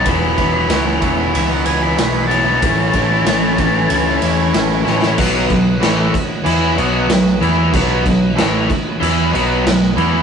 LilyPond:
<<
  \new Staff \with { instrumentName = "Lead electric guitar" } { \time 4/4 \key b \mixolydian \tempo 4 = 94 b''4 r4 e''16 fis''16 gis''16 b''8. a''8~ | a''2~ a''8 r4. | r1 | r1 | }
  \new Staff \with { instrumentName = "Tonewheel organ" } { \time 4/4 \key b \mixolydian << { \tuplet 3/2 { <eis' g' c'' g''>8 <e' fis' b' fis''>4~ } <e' fis' b' fis''>2. | <e' a' cis'' fis''>1 | <fis' b' dis'' fis''>1 | <fis' b' dis''>1 | } \\ { r1 | r1 | <b c' d' e' eis' g' a' b' c'' d'' e'' eis''>8 r2. r8 | r1 | } >> }
  \new Staff \with { instrumentName = "Overdriven electric guitar" } { \time 4/4 \key b \mixolydian <e fis b e'>8 <e fis b e'>16 <fis b e'>16 <e fis b e'>8 <e fis b e'>16 <fis b e'>8 <fis b e'>16 <e fis b e'>16 <fis b e'>16 <e fis b e'>16 <fis b e'>8 <fis b e'>16 | <a, e a cis' e'>8 <e a cis' e'>16 <a cis' e'>16 <a, e a cis' e'>8 <e a cis' e'>16 <a cis' e'>8 <a cis' e'>16 <e a cis' e'>16 <a cis' e'>16 <a, e a cis' e'>16 <a cis' e'>8 <a cis' e'>16 | <b, fis b>8 <b, fis>8 <a, e a>8 r8 <e b e'>8 <b, fis b>8 <b, fis>8 <e b e'>8 | <b, fis b>8 <b, fis>8 <a, e a>8 r8 <e b e'>8 <b, fis b>8 <b, fis>8 <e b e'>8 | }
  \new Staff \with { instrumentName = "Overdriven electric guitar" } { \clef bass \time 4/4 \key b \mixolydian <e, b, e b e' fis'>2.~ <e, b, e b e' fis'>8 <e, b, e b e' fis'>8 | <a, e a cis' e'>2.~ <a, e a cis' e'>8 <a, e a cis' e'>8 | <b, fis b>8 <b, fis>8 <a, e a>8 r8 <e b e'>8 <b, fis b>8 <b, fis>8 <e b e'>8 | <b, fis b>8 <b, fis>8 <a, e a>8 r8 <e b e'>8 <b, fis b>8 <b, fis>8 <e b e'>8 | }
  \new Staff \with { instrumentName = "Picked electric bass" } { \clef bass \time 4/4 \key b \mixolydian e,,8 e,,8 cis,8 e,,8 cis,8 cis,8 b,,4 | a,,8 a,,8 a,,8 a,,8 cis,8 e,8 a,,8 a,,8 | b,,8 b,,8 a,,8 r8 e,8 b,,8 b,,8 e,8 | b,,8 b,,8 a,,8 r8 e,8 b,,8 b,,8 e,8 | }
  \new DrumStaff \with { instrumentName = "Drums" } \drummode { \time 4/4 <bd cymr>8 <bd cymr>8 <cymr sn>8 <bd cymr>8 cymr8 cymr8 <cymr sn>8 cymr8 | <bd cymr>8 <bd cymr>8 <cymr sn>8 <bd cymr>8 cymr8 cymr8 <cymr sn>16 sn16 sn16 sn16 | <cymc bd>8 <cymc bd>8 <cymc sn>8 <cymc bd>8 cymc8 cymc8 <cymc sn>16 sn16 cymc8 | <cymc bd>8 <cymc bd>8 <cymc sn>8 <cymc bd>8 cymc8 cymc8 <cymc sn>16 sn16 cymc8 | }
>>